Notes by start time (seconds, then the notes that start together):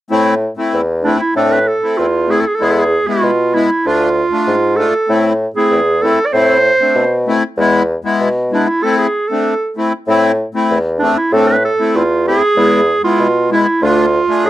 0.10 A2 A3 C4 E4
0.57 A3 C4 E4
0.73 E2
1.03 A3 C4 D4 E4
1.20 E4
1.35 A2 A3 C4 D4 A4
1.52 B4
1.68 A4
1.82 A3 C4 E4
1.97 E2 F4
2.28 A3 C4 E4 G#4
2.40 A4
2.47 G#4
2.55 A4
2.59 E2 G#3 B3 E4
2.64 G#4
2.71 A4
2.79 G#4
3.07 G#3 B3 E4 F4
3.23 B2
3.54 G#3 B3 E4
3.86 D2 A3 D4 F4
4.32 A3 D4 F4
4.47 G#2
4.76 A3 D4 F4 A4
5.08 A2 A3 C4 E4
5.56 A3 C4 E4 G#4
5.71 E2
6.02 A3 C4 E4 A4
6.26 D5
6.33 A2 A3 C4 E4 C5
6.80 A3 C4 D4
6.95 B2
7.27 A3 C4 E4
7.57 E2 G#3 B3 E4
8.04 G#3 B3 E4
8.20 B2
8.51 G#3 B3 D4 E4
8.68 E4
8.83 A3 C4 E4 A4
8.98 G#4
9.28 A3 C4 A4
9.32 D4
9.76 A3 C4 E4
10.08 A2 A3 C4 E4
10.54 A3 C4 E4
10.70 E2
10.99 A3 C4 D4
11.17 E4
11.32 A2 A3 C4 D4 A4
11.48 B4
11.65 A4
11.79 A3 C4 E4
11.95 E2 F4
12.26 A3 C4 E4 G#4
12.56 E2 G#3 B3 E4
13.03 G#3 B3 E4 F4
13.20 B2
13.51 G#3 B3 E4
13.82 D2 A3 D4 F4
14.28 A3 D4 G#4
14.44 A2 G#4